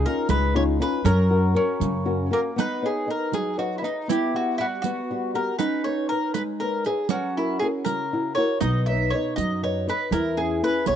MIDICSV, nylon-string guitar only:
0, 0, Header, 1, 2, 480
1, 0, Start_track
1, 0, Key_signature, 5, "major"
1, 0, Tempo, 503356
1, 1004, Time_signature, 6, 3, 24, 8
1, 10449, End_track
2, 0, Start_track
2, 0, Title_t, "Nylon-string guitar"
2, 0, Program_c, 0, 24
2, 53, Note_on_c, 0, 61, 55
2, 55, Note_on_c, 0, 63, 49
2, 61, Note_on_c, 0, 65, 63
2, 287, Note_on_c, 0, 56, 81
2, 439, Note_off_c, 0, 61, 0
2, 439, Note_off_c, 0, 63, 0
2, 441, Note_off_c, 0, 65, 0
2, 516, Note_on_c, 0, 61, 63
2, 524, Note_on_c, 0, 63, 54
2, 524, Note_on_c, 0, 65, 67
2, 750, Note_off_c, 0, 61, 0
2, 752, Note_off_c, 0, 63, 0
2, 755, Note_off_c, 0, 56, 0
2, 757, Note_off_c, 0, 65, 0
2, 760, Note_on_c, 0, 61, 59
2, 766, Note_on_c, 0, 63, 48
2, 769, Note_on_c, 0, 65, 62
2, 952, Note_off_c, 0, 61, 0
2, 954, Note_off_c, 0, 63, 0
2, 957, Note_off_c, 0, 65, 0
2, 995, Note_on_c, 0, 54, 71
2, 1240, Note_on_c, 0, 61, 54
2, 1241, Note_on_c, 0, 66, 48
2, 1247, Note_on_c, 0, 70, 60
2, 1458, Note_off_c, 0, 61, 0
2, 1463, Note_off_c, 0, 66, 0
2, 1464, Note_off_c, 0, 70, 0
2, 1470, Note_on_c, 0, 61, 52
2, 1471, Note_off_c, 0, 54, 0
2, 1473, Note_on_c, 0, 66, 48
2, 1479, Note_on_c, 0, 70, 62
2, 1724, Note_on_c, 0, 49, 70
2, 1868, Note_off_c, 0, 61, 0
2, 1871, Note_off_c, 0, 66, 0
2, 1871, Note_off_c, 0, 70, 0
2, 1958, Note_on_c, 0, 61, 58
2, 1962, Note_on_c, 0, 66, 54
2, 1965, Note_on_c, 0, 70, 63
2, 2187, Note_off_c, 0, 61, 0
2, 2190, Note_off_c, 0, 66, 0
2, 2195, Note_off_c, 0, 70, 0
2, 2198, Note_on_c, 0, 61, 50
2, 2199, Note_off_c, 0, 49, 0
2, 2203, Note_on_c, 0, 66, 48
2, 2206, Note_on_c, 0, 70, 57
2, 2394, Note_off_c, 0, 61, 0
2, 2396, Note_off_c, 0, 66, 0
2, 2399, Note_off_c, 0, 70, 0
2, 2443, Note_on_c, 0, 59, 64
2, 2692, Note_on_c, 0, 71, 46
2, 2694, Note_off_c, 0, 59, 0
2, 2698, Note_on_c, 0, 73, 45
2, 2701, Note_on_c, 0, 75, 48
2, 2911, Note_off_c, 0, 71, 0
2, 2914, Note_off_c, 0, 73, 0
2, 2921, Note_on_c, 0, 71, 45
2, 2923, Note_off_c, 0, 75, 0
2, 2927, Note_on_c, 0, 73, 41
2, 2935, Note_on_c, 0, 75, 55
2, 3163, Note_on_c, 0, 54, 61
2, 3318, Note_off_c, 0, 71, 0
2, 3320, Note_off_c, 0, 73, 0
2, 3325, Note_off_c, 0, 75, 0
2, 3406, Note_on_c, 0, 71, 53
2, 3410, Note_on_c, 0, 73, 49
2, 3416, Note_on_c, 0, 75, 62
2, 3627, Note_off_c, 0, 71, 0
2, 3635, Note_off_c, 0, 73, 0
2, 3638, Note_on_c, 0, 71, 48
2, 3640, Note_off_c, 0, 75, 0
2, 3641, Note_off_c, 0, 54, 0
2, 3646, Note_on_c, 0, 73, 39
2, 3651, Note_on_c, 0, 75, 55
2, 3836, Note_off_c, 0, 71, 0
2, 3841, Note_off_c, 0, 73, 0
2, 3844, Note_off_c, 0, 75, 0
2, 3890, Note_on_c, 0, 59, 59
2, 4140, Note_on_c, 0, 67, 44
2, 4141, Note_on_c, 0, 76, 43
2, 4146, Note_on_c, 0, 78, 55
2, 4364, Note_off_c, 0, 59, 0
2, 4376, Note_off_c, 0, 76, 0
2, 4376, Note_off_c, 0, 78, 0
2, 4380, Note_on_c, 0, 55, 45
2, 4387, Note_on_c, 0, 76, 44
2, 4389, Note_on_c, 0, 78, 49
2, 4519, Note_off_c, 0, 67, 0
2, 4618, Note_on_c, 0, 59, 69
2, 4767, Note_off_c, 0, 55, 0
2, 4771, Note_off_c, 0, 78, 0
2, 4772, Note_off_c, 0, 76, 0
2, 4868, Note_on_c, 0, 55, 53
2, 4871, Note_on_c, 0, 76, 53
2, 4876, Note_on_c, 0, 78, 57
2, 5085, Note_off_c, 0, 59, 0
2, 5088, Note_off_c, 0, 76, 0
2, 5088, Note_off_c, 0, 78, 0
2, 5094, Note_on_c, 0, 67, 45
2, 5098, Note_on_c, 0, 76, 48
2, 5101, Note_on_c, 0, 78, 55
2, 5241, Note_off_c, 0, 55, 0
2, 5283, Note_off_c, 0, 67, 0
2, 5286, Note_off_c, 0, 76, 0
2, 5287, Note_off_c, 0, 78, 0
2, 5337, Note_on_c, 0, 61, 64
2, 5588, Note_on_c, 0, 71, 44
2, 5592, Note_on_c, 0, 73, 42
2, 5803, Note_off_c, 0, 61, 0
2, 5821, Note_off_c, 0, 71, 0
2, 5823, Note_off_c, 0, 73, 0
2, 5832, Note_on_c, 0, 71, 47
2, 5838, Note_on_c, 0, 73, 47
2, 6063, Note_on_c, 0, 56, 73
2, 6212, Note_off_c, 0, 71, 0
2, 6213, Note_off_c, 0, 73, 0
2, 6311, Note_on_c, 0, 71, 51
2, 6315, Note_on_c, 0, 73, 53
2, 6525, Note_off_c, 0, 56, 0
2, 6531, Note_off_c, 0, 71, 0
2, 6537, Note_off_c, 0, 73, 0
2, 6543, Note_on_c, 0, 71, 52
2, 6548, Note_on_c, 0, 73, 44
2, 6548, Note_on_c, 0, 76, 53
2, 6727, Note_off_c, 0, 71, 0
2, 6729, Note_off_c, 0, 76, 0
2, 6730, Note_off_c, 0, 73, 0
2, 6780, Note_on_c, 0, 54, 59
2, 7036, Note_on_c, 0, 66, 46
2, 7039, Note_on_c, 0, 70, 50
2, 7041, Note_on_c, 0, 64, 45
2, 7246, Note_off_c, 0, 54, 0
2, 7251, Note_off_c, 0, 64, 0
2, 7260, Note_off_c, 0, 66, 0
2, 7260, Note_off_c, 0, 70, 0
2, 7263, Note_on_c, 0, 64, 52
2, 7270, Note_on_c, 0, 66, 47
2, 7276, Note_on_c, 0, 70, 49
2, 7501, Note_on_c, 0, 49, 62
2, 7649, Note_off_c, 0, 64, 0
2, 7654, Note_off_c, 0, 66, 0
2, 7654, Note_off_c, 0, 70, 0
2, 7752, Note_on_c, 0, 64, 55
2, 7755, Note_on_c, 0, 66, 46
2, 7762, Note_on_c, 0, 70, 56
2, 7969, Note_off_c, 0, 49, 0
2, 7970, Note_off_c, 0, 64, 0
2, 7978, Note_off_c, 0, 66, 0
2, 7980, Note_off_c, 0, 70, 0
2, 7982, Note_on_c, 0, 64, 53
2, 7988, Note_on_c, 0, 66, 47
2, 7994, Note_on_c, 0, 70, 54
2, 8169, Note_off_c, 0, 64, 0
2, 8174, Note_off_c, 0, 66, 0
2, 8175, Note_off_c, 0, 70, 0
2, 8214, Note_on_c, 0, 59, 64
2, 8473, Note_on_c, 0, 71, 45
2, 8478, Note_on_c, 0, 75, 52
2, 8482, Note_on_c, 0, 73, 47
2, 8687, Note_off_c, 0, 59, 0
2, 8699, Note_off_c, 0, 73, 0
2, 8700, Note_off_c, 0, 71, 0
2, 8705, Note_off_c, 0, 75, 0
2, 8710, Note_on_c, 0, 71, 43
2, 8713, Note_on_c, 0, 73, 39
2, 8716, Note_on_c, 0, 75, 51
2, 8939, Note_on_c, 0, 54, 62
2, 9096, Note_off_c, 0, 73, 0
2, 9097, Note_off_c, 0, 71, 0
2, 9100, Note_off_c, 0, 75, 0
2, 9182, Note_on_c, 0, 71, 53
2, 9184, Note_on_c, 0, 73, 52
2, 9190, Note_on_c, 0, 75, 62
2, 9402, Note_off_c, 0, 71, 0
2, 9403, Note_off_c, 0, 73, 0
2, 9407, Note_off_c, 0, 75, 0
2, 9410, Note_off_c, 0, 54, 0
2, 9413, Note_on_c, 0, 71, 46
2, 9418, Note_on_c, 0, 73, 44
2, 9418, Note_on_c, 0, 75, 48
2, 9605, Note_off_c, 0, 71, 0
2, 9606, Note_off_c, 0, 73, 0
2, 9608, Note_off_c, 0, 75, 0
2, 9637, Note_on_c, 0, 52, 65
2, 9888, Note_on_c, 0, 61, 49
2, 9892, Note_on_c, 0, 64, 46
2, 9898, Note_on_c, 0, 68, 48
2, 10114, Note_off_c, 0, 52, 0
2, 10122, Note_off_c, 0, 61, 0
2, 10126, Note_off_c, 0, 64, 0
2, 10131, Note_off_c, 0, 68, 0
2, 10134, Note_on_c, 0, 61, 46
2, 10138, Note_on_c, 0, 64, 43
2, 10143, Note_on_c, 0, 68, 59
2, 10361, Note_on_c, 0, 47, 65
2, 10449, Note_off_c, 0, 47, 0
2, 10449, Note_off_c, 0, 61, 0
2, 10449, Note_off_c, 0, 64, 0
2, 10449, Note_off_c, 0, 68, 0
2, 10449, End_track
0, 0, End_of_file